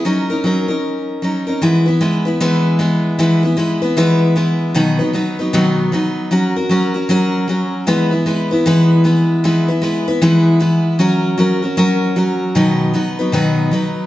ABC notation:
X:1
M:4/4
L:1/8
Q:"Swing" 1/4=154
K:Elyd
V:1 name="Steel-string acoustic guitar"
[F,CDA] [CDA] [F,CDA] [CDA]3 [F,CDA] [CDA] | [E,G,B,EB] [B,EB] [G,B,EB] [B,EB] [E,G,B,EB]2 [G,B,EB]2 | [E,G,B,EB] [B,EB] [G,B,EB] [B,EB] [E,G,B,EB]2 [G,B,EB]2 | [B,,D,F,B,DB] [F,B,DB] [F,B,DB] [F,B,DB] [B,,D,F,B,DB]2 [F,B,DB]2 |
[F,CFA] [CFA] [F,CFA] [CFA] [F,CFA]2 [F,CFA]2 | [E,G,B,EB] [B,EB] [G,B,EB] [B,EB] [E,G,B,EB]2 [G,B,EB]2 | [E,G,B,EB] [B,EB] [G,B,EB] [B,EB] [E,G,B,EB]2 [G,B,EB]2 | [F,CFA]2 [F,CFA] [CFA] [F,CFA]2 [F,CFA]2 |
[B,,D,F,B,DB]2 [F,B,DB] [F,B,DB] [B,,D,F,B,DB]2 [F,B,DB]2 |]